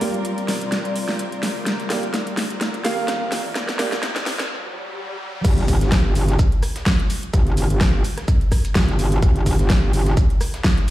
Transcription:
Already playing: G3 C4 F4 A#4 D5, riser
0.01 A#3 G4 D5, open hi-hat
0.14 closed hi-hat
0.25 closed hi-hat
0.38 closed hi-hat
0.48 snare, open hi-hat
0.61 closed hi-hat
0.72 snare, closed hi-hat
0.85 closed hi-hat
0.96 open hi-hat
1.09 snare
1.19 closed hi-hat
1.32 closed hi-hat
1.43 snare, open hi-hat
1.66 snare, closed hi-hat
1.80 closed hi-hat
1.90 A#3 G4 D5, snare, open hi-hat
2.03 closed hi-hat
2.14 snare, closed hi-hat
2.27 closed hi-hat
2.37 snare, open hi-hat
2.50 closed hi-hat
2.61 snare, closed hi-hat
2.74 closed hi-hat
2.85 A#3 G4 F5, snare, open hi-hat
3.08 snare, closed hi-hat
3.32 snare, open hi-hat
3.55 snare, closed hi-hat
3.69 snare, closed hi-hat
3.79 A#3 G4 D5, snare, open hi-hat
3.92 snare, closed hi-hat
4.03 snare, closed hi-hat
4.16 snare, closed hi-hat
4.26 snare, open hi-hat
4.39 snare, closed hi-hat
4.50 swell
5.45 G1, kick, closed hi-hat, crash, shaker
5.58 closed hi-hat
5.68 kick, open hi-hat, shaker
5.81 G1, snare, closed hi-hat
5.92 kick, snare, closed hi-hat, shaker
6.15 G1, open hi-hat, shaker
6.28 snare, closed hi-hat
6.39 kick, closed hi-hat, shaker
6.52 closed hi-hat
6.63 cross-stick, open hi-hat, shaker
6.76 snare, closed hi-hat
6.86 kick, snare, closed hi-hat, shaker
6.99 closed hi-hat
7.10 open hi-hat, shaker
7.23 closed hi-hat
7.33 G1, kick, closed hi-hat, shaker
7.47 closed hi-hat
7.57 open hi-hat, shaker
7.70 G1, closed hi-hat
7.81 kick, snare, closed hi-hat, shaker
8.04 open hi-hat, shaker
8.18 cross-stick, snare, closed hi-hat
8.28 kick, closed hi-hat, shaker
8.41 closed hi-hat
8.52 kick, cross-stick, open hi-hat, shaker
8.65 closed hi-hat
8.75 G1, kick, snare, closed hi-hat, shaker
8.88 snare, closed hi-hat
8.99 open hi-hat, shaker
9.12 closed hi-hat
9.22 G1, kick, closed hi-hat, shaker
9.36 closed hi-hat
9.46 kick, open hi-hat, shaker
9.59 G1, snare, closed hi-hat
9.70 kick, snare, closed hi-hat, shaker
9.93 G1, open hi-hat, shaker
10.06 snare, closed hi-hat
10.17 kick, closed hi-hat, shaker
10.30 closed hi-hat
10.41 cross-stick, open hi-hat, shaker
10.54 snare, closed hi-hat
10.64 kick, snare, closed hi-hat, shaker
10.77 closed hi-hat

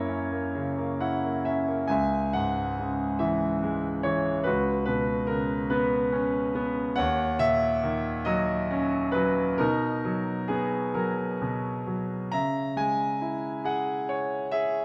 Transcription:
Already playing: F#2 A#3 E4 A#4 C#5
0.09 C#4
0.32 A#3
0.55 C#3
0.78 A#3
1.00 E4 F#5
1.23 A#3
1.45 C#4 E5
1.68 A#3
1.88 C#2 E5 G#5
2.33 G#2 F#5
2.79 C#3
3.19 E3 E5
3.63 G#3
4.03 E3 C#5
4.44 C#2 F#4 B4
4.86 B2 B4
5.27 C#3 A#4
5.70 B3 B4
6.12 C#4
6.55 B3
6.96 D#2 C#5 F#5
7.39 A#2 E5
7.83 D#3
8.25 F#3 D#5
8.71 C#4
9.12 F#3 B4
9.58 B2 D#4 A#4
10.05 F#3
10.48 B3 G#4
10.94 F#3 A#4
11.42 B2
11.87 F#3
12.31 C#3 E5 A#5
12.76 G#3 G#5
13.21 E4
13.64 G#4 F#5
14.09 C#5
14.51 G#4 E5

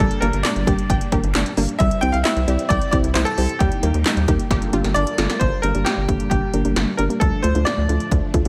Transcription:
Already playing: G3 A#3 D4
0.00 G3 A4, kick, closed hi-hat
0.11 closed hi-hat
0.21 G1 G3 A#3 D4 G4 A#4, closed hi-hat
0.33 G1, closed hi-hat
0.43 D4 D5, snare, clap, closed hi-hat
0.56 G1, closed hi-hat
0.67 G1 G3 A#3 D4 G4 A#4, kick, closed hi-hat
0.79 closed hi-hat
0.90 G1 G5, kick, closed hi-hat
1.01 closed hi-hat
1.12 G1 G3 A#3 D4 G4 A#4, kick, closed hi-hat
1.24 G1, closed hi-hat
1.35 G1 D4, snare, clap, closed hi-hat
1.46 closed hi-hat
1.57 G1 G3 A#3 D4 G4 A#4, open hi-hat
1.69 closed hi-hat
1.79 C2 G3 C4 E4 E5, kick, closed hi-hat
1.91 closed hi-hat
2.01 C2 G3 C4 E4 G4 C5 G5, closed hi-hat
2.12 C2 F5, closed hi-hat
2.24 E4 E5, snare, clap, closed hi-hat
2.36 C2, closed hi-hat
2.48 C2 G3 C4 E4 G4 D5, closed hi-hat
2.59 closed hi-hat
2.69 C2 D5 G5, kick, closed hi-hat
2.82 closed hi-hat
2.91 C2 G3 C4 E4 G4 C5 D5, kick, closed hi-hat
3.04 C2, closed hi-hat
3.14 C2 E4 C5, snare, clap, closed hi-hat
3.25 A4, closed hi-hat
3.38 C2 G3 C4 E4 G4 C5, open hi-hat
3.49 closed hi-hat
3.59 D#2 G3 A#3 D#4 G4, kick, closed hi-hat
3.72 closed hi-hat
3.83 D#2 G3 A#3 D#4 G4 A#4, closed hi-hat
3.94 D#2, closed hi-hat
4.06 D#4, snare, clap, closed hi-hat
4.17 D#2, closed hi-hat
4.28 D#2 G3 A#3 D#4 G4 A#4, kick, closed hi-hat
4.39 closed hi-hat
4.51 G1 G3 D4 F4 G4 A4 A#4, kick, snare, closed hi-hat
4.62 closed hi-hat
4.73 G1 G3 A#3 D4 F4 G4, closed hi-hat
4.84 G1, snare, closed hi-hat
4.94 G1 D4 D5, closed hi-hat
5.07 closed hi-hat
5.18 G1 G3 A#3 D4 F4 A4, snare, closed hi-hat
5.30 snare, closed hi-hat
5.40 G1 G3 A#3 D4 C5, kick, closed hi-hat
5.62 G1 A#3 D4 G4 A#4, closed hi-hat
5.75 G1 A#3 D4 G4 A#4, closed hi-hat
5.85 G4, snare, closed hi-hat
5.97 G1
6.09 G1 A#3 D4 G4 A4, kick, closed hi-hat
6.20 closed hi-hat
6.30 G1 G4, kick, closed hi-hat
6.54 G1 A#3 D4 G4 A#4, closed hi-hat
6.65 G1 A#3 D4 G4 A#4, closed hi-hat
6.76 G1, snare, closed hi-hat
6.97 G1 A#3 D4 G4 A#4, closed hi-hat
7.10 A#3 D4 G4 A#4, closed hi-hat
7.20 D2 F3 A3 A4, kick, closed hi-hat
7.43 D2 A3 D4 F4 A4 C5, closed hi-hat
7.55 D2 A3 D4 F4 A4, closed hi-hat
7.65 D5, snare, closed hi-hat
7.78 D2
7.89 D2 A3 D4 F4 A4, closed hi-hat
8.00 closed hi-hat
8.11 D2, kick, closed hi-hat
8.34 D2 A3 D4 F4 A4, kick, closed hi-hat

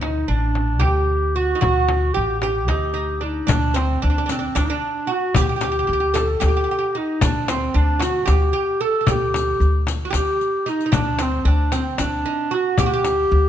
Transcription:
Already playing: D2
0.01 D#4, frame drum
0.28 A1 D4
0.55 frame drum
0.80 D2 G4, frame drum
1.35 F#4
1.55 D#4
1.61 D2 F#4, frame drum
1.89 frame drum
2.13 A1 G4
2.40 G4, frame drum
2.68 D2 D#4 G4, frame drum
2.94 D#4
3.21 D4 D#4
3.47 D2 D4, riq, frame drum
3.74 C4, riq, frame drum
4.02 D2 D4
4.10 D4
4.18 D4
4.26 D4, riq, frame drum
4.31 C4 D4
4.39 D4
4.55 D2 D4, riq, frame drum
4.65 D#4
4.70 D4
5.07 F#4
5.12 F#4
5.34 D2 G4, riq, frame drum
5.41 G4
5.49 G4
5.56 G4
5.61 G4, riq, frame drum
5.72 G4
5.79 G4
5.87 D2 G4
5.93 G4
6.00 G4
6.14 A4, riq, frame drum
6.40 D2 G4, riq, frame drum
6.45 G4
6.57 G4
6.64 G4
6.71 G4
6.79 G4
6.95 D#4
7.21 D2 D4, riq, frame drum
7.48 C4, riq, frame drum
7.74 D2 D4
7.99 F#4, riq, frame drum
8.26 D2 G4, riq, frame drum
8.53 G4
8.81 A4
9.01 A4
9.06 D2 G4, riq, frame drum
9.11 G4
9.34 riq, frame drum
9.60 D2, riq
9.87 riq, frame drum
10.05 F#4
10.11 D2 G4, riq, frame drum
10.16 G4
10.41 riq
10.66 D#4, riq
10.81 riq
10.86 D#4
10.92 D2 D4, riq, frame drum
11.19 C4, riq, frame drum
11.45 D2 D4
11.72 C4, riq, frame drum
11.98 D2 D4, riq, frame drum
12.26 D#4
12.51 F#4
12.78 D2 G4, riq, frame drum
12.86 F#4
12.93 G4
13.04 riq, frame drum
13.32 D2

